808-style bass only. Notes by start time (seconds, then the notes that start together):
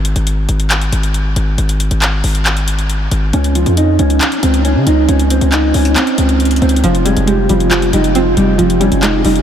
Already playing: G#1
0.16 G#1
0.49 G#1
0.92 G#1
1.36 G#1
1.58 G#1
1.91 G#1
2.24 G#1
3.11 G#1
3.33 C#2
3.66 F2
3.99 C#2
4.43 C#2
4.76 C#3
4.87 C#2
5.09 C#2
5.41 C#2
5.74 C#2
6.18 C#2
6.62 C#2
6.84 F1
7.17 F1
7.49 F1
7.93 F1
8.37 F1
8.59 F1
8.92 F1
9.25 F1